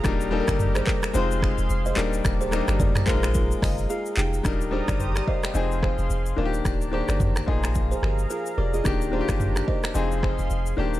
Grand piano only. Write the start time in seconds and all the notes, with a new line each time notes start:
0.04 G3 A#3 D4 D#4 A#4
0.31 G3 A#3 D4 D#4 A4
0.40 A#4
1.13 G#3 C4 D#4 F4 C5
1.96 G3 A#3 D4 D#4 A#4
2.51 G3 A#3 D4 D#4 A#4
3.06 G#3 A#3 D4 F4 A#4
3.14 D#4
3.62 D#5
3.90 F5
4.17 G5
4.43 G3 D4 D#4 A#4
4.71 G3 D4 D#4 A#4
5.00 C5
5.16 D5
5.27 F5
5.43 G5
5.54 F3 C4 D#4 G#4
6.36 D#3 A#3 D4 F4
6.45 G4
6.91 D#3 A#3 D4 G4
7.46 F3 A#3 D#4 G#4
8.30 A#4
8.58 D5
8.74 D#5
8.84 D#3 A#3 D4 G4
9.12 D#3 A#3 D4 F4
9.21 G4
9.94 F3 C4 D#4 G#4
10.77 D#3 A#3 D4 G4